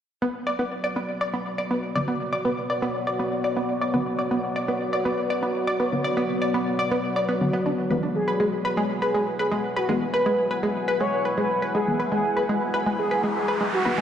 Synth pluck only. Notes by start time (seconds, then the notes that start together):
0.22 B3
0.47 D5
0.59 B3
0.84 D5
0.96 B3
1.21 D5
1.33 B3
1.58 D5
1.71 B3
1.96 D5
2.08 B3
2.33 D5
2.45 B3
2.70 D5
2.82 B3
3.07 D5
3.19 B3
3.44 D5
3.57 B3
3.81 D5
3.94 B3
4.19 D5
4.31 B3
4.56 D5
4.68 B3
4.93 D5
5.05 B3
5.30 D5
5.43 B3
5.67 D5
5.80 B3
6.04 D5
6.17 B3
6.42 D5
6.54 B3
6.79 D5
6.91 B3
7.16 D5
7.29 B3
7.53 B3
7.66 D4
7.91 B4
8.03 D4
8.28 B4
8.40 G#3
8.65 B4
8.77 G#3
9.02 B4
9.14 G#3
9.39 B4
9.52 G#3
9.77 B4
9.89 G#3
10.14 B4
10.26 G#3
10.51 B4
10.63 G#3
10.88 B4
11.00 G#3
11.25 B4
11.37 G#3
11.62 B4
11.75 G#3
12.00 B4
12.12 G#3
12.37 B4
12.49 G#3
12.74 B4
12.86 G#3
13.11 B4
13.24 G#3
13.48 B4
13.61 G#3
13.85 B4
13.98 G#3